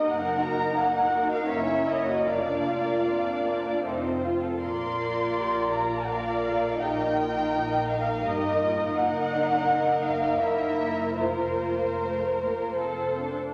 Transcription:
<<
  \new Staff \with { instrumentName = "Violin section" } { \time 3/4 \key bes \major \tempo 4 = 81 ges''8 bes''8 ges''8. f''16 fes''8 ees''8 | f''2 r4 | c'''4. bes''8 f''4 | g''4. f''8 ees''4 |
ges''4. f''8 fes''4 | c''2 r4 | }
  \new Staff \with { instrumentName = "Violin section" } { \time 3/4 \key bes \major << { bes'2 des''4 | d''2 c''8. r16 | d''2 d''4 | ees''2 ees''4 |
ees''2 bes'4 | c''2 c''8. r16 | } \\ { bes16 ees'16 ges'16 ees'16 bes16 ees'16 ges'16 ees'16 bes16 des'16 fes'16 ges'16 | bes16 d'16 f'16 bes'16 f'16 d'16 bes16 d'16 a16 c'16 f'16 a'16 | bes'2 bes'4 | bes'2 bes'4 |
bes'2 bes'4 | bes'2 a'8. r16 | } >> }
  \new Staff \with { instrumentName = "Cello section" } { \time 3/4 \key bes \major bes'4 ees'4 fes'4 | d'4 c'8 d'8 ees'8 f'8 | r4 g'8 f'8 bes'8 a'8 | g'8 f'8 ees'4 g'8 f'8 |
ees'8 d'8 ees'2 | f'2~ f'8 r8 | }
  \new Staff \with { instrumentName = "Viola section" } { \time 3/4 \key bes \major << { ees'2 des'4 | f'2~ f'8. r16 | f'2 f'4 | ees'2 ees'4 |
ees'2 fes'4 | f'4 a8 bes8 c'8 d'8 | } \\ { bes2.~ | bes2 c'8. r16 | bes2 bes4 | bes2 bes4 |
bes2 bes4 | bes4 r2 | } >> }
  \new Staff \with { instrumentName = "Double bass section" } { \clef bass \time 3/4 \key bes \major ges,,4 r4 ges,,4 | f,,4 r4 f,,4 | bes,,2. | bes,,2 g,,4 |
ges,,2 ges,,4 | f,,2 f,,8. r16 | }
>>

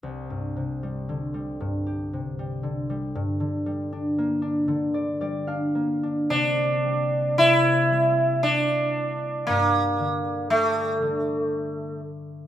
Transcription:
<<
  \new Staff \with { instrumentName = "Sitar" } { \time 3/4 \key c \mixolydian \tempo 4 = 58 r2. | r2. | d'4 e'4 d'4 | bes4 a4. r8 | }
  \new Staff \with { instrumentName = "Harp" } { \time 3/4 \key c \mixolydian r2. | r2 d''16 f''8. | r2. | r2. | }
  \new Staff \with { instrumentName = "Harp" } { \clef bass \time 3/4 \key c \mixolydian c,16 g,16 c16 g16 d16 g16 g,16 g'16 c16 g16 d16 g16 | g,16 d16 g16 d'16 bes16 d'16 d16 d''16 g16 d'16 bes16 d'16 | c8 g8 c8 g4. | g,8 d8 g8 d4. | }
>>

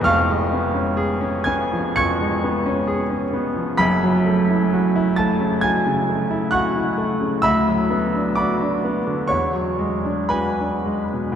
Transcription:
<<
  \new Staff \with { instrumentName = "Grand piano" } { \time 4/4 \key cis \phrygian \tempo 4 = 65 <eis'' cis''' eis'''>4. <gis'' gis'''>8 <cis''' gis''' cis''''>2 | <b'' b'''>4. <a'' a'''>8 <gis'' gis'''>4 <fis'' cis''' fis'''>4 | <e'' b'' e'''>4 <d'' b'' d'''>4 <cis'' cis'''>4 <b' gis'' b''>4 | }
  \new Staff \with { instrumentName = "Grand piano" } { \time 4/4 \key cis \phrygian <eis,, eis,>16 gis16 b16 cis'16 gis'16 cis'16 b16 eis16 eis,16 gis16 b16 cis'16 gis'16 cis'16 b16 eis16 | <fis,, fis,>16 fis16 a16 e'16 fis'16 e'16 a16 cis16 fis16 cis16 a16 e'16 fis'16 e'16 a16 cis16 | d,16 fis16 b16 d'16 fis'16 d'16 b16 d16 e,16 fis16 gis16 d'16 fis'16 d'16 gis16 b,16 | }
>>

